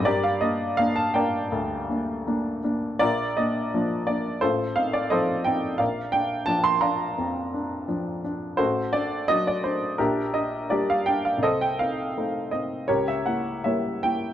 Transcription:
\new Staff \with { instrumentName = "Upright piano" } { \time 4/4 \key g \minor \tempo 4 = 84 << { <g' bes' d''>16 f''16 ees''8 f''16 a''16 <bes' d'' g''>2 r8 | <f' bes' d''>8 ees''4 d''8 <f' a' c''>8 f''16 d''16 <a' c'' ees''>8 g''8 | <bes' d'' f''>8 g''8 a''16 c'''16 <d'' f'' bes''>2 r8 | <fis' a' c''>8 d''8 ees''16 d''16 c''8 <d' g' bes'>8 ees''8 <g' bes' d''>16 f''16 g''16 f''16 |
<a' c'' ees''>16 g''16 f''4 ees''8 <g' ais' cis''>16 e''16 fis''8 <ais' cis'' e''>8 g''8 | } \\ { g,8 <bes d'>8 <bes d'>8 <bes d'>8 d,8 <bes d'>8 <bes d'>8 <bes d'>8 | bes,,8 <bes d'>8 <f bes d'>8 <bes d'>8 a,,8 <c' ees'>8 <f c' ees'>8 <c' ees'>8 | bes,,8 d'8 <f d'>8 d'8 f,8 d'8 <f d'>8 d'8 | a,,8 d'8 <fis d'>8 d'8 bes,,8 d'8 <g d'>8 d'8 |
c,8 <c' ees'>8 <a c' ees'>8 <c' ees'>8 cis,8 <ais e'>8 <g ais e'>8 <ais e'>8 | } >> }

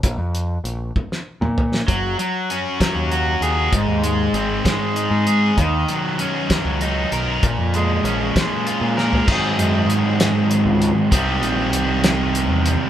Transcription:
<<
  \new Staff \with { instrumentName = "Overdriven electric guitar" } { \clef bass \time 6/8 \key aes \mixolydian \tempo 4. = 65 r2. | ges8 ges8 des'8 ges8 ges'8 aes'8 | aes,8 aes8 c'8 aes8 ees'8 aes'8 | ees8 ges8 des'8 ges8 ees'8 bes'8 |
bes,8 aes8 des'8 aes8 f'8 bes'8 | <aes, ees ges c' ees' aes'>2. | <c ees g c' g'>2. | }
  \new Staff \with { instrumentName = "Picked electric bass" } { \clef bass \time 6/8 \key aes \mixolydian bes,,16 f,8. bes,,8 r8. bes,8. | ges,,8 r4 r16 ees,8. ees,8 | aes,,16 ees,8. aes,,8 r8. aes,8. | ees,8 r4 r16 des,8. ces,8 |
bes,,16 f,8. bes,,8 r8. bes,8. | aes,8 ges,8 aes,4~ aes,16 des,8 r16 | c,8 bes,,8 c,4~ c,16 fes,8 r16 | }
  \new DrumStaff \with { instrumentName = "Drums" } \drummode { \time 6/8 <hh bd>8 hh8 hh8 <bd tommh>16 sn8 toml16 tomfh16 sn16 | <hh bd>8 hh8 hh8 <hh bd sn>8 hh8 hh8 | <hh bd>8 hh8 hh8 <hh bd sn>8 hh8 hh8 | <hh bd>8 hh8 hh8 <hh bd sn>8 hh8 hh8 |
<hh bd>8 hh8 hh8 <hh bd sn>8 hh8 sn16 tomfh16 | <cymc bd>8 hh8 hh8 <hh sn>8 hh8 hh8 | <hh bd>8 hh8 hh8 <hh sn>8 hh8 hh8 | }
>>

